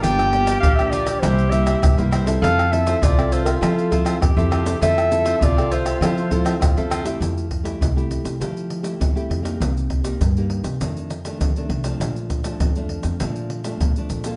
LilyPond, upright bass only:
\new Staff \with { instrumentName = "Upright bass" } { \clef bass \time 4/4 \key f \major \tempo 4 = 100 g,,4 bes,,4 c,4 c,16 c,8. | f,4 c,4 f4 f,16 f,8. | f,4 c,4 f4 f,16 f,8. | f,4 c,8. c,16 f4 f16 r16 f,8 |
c,4 g,8. c,16 f,4 f16 r16 c,8 | bes,,4 f,8. f,16 bes,4 bes,16 r16 bes,,8 | }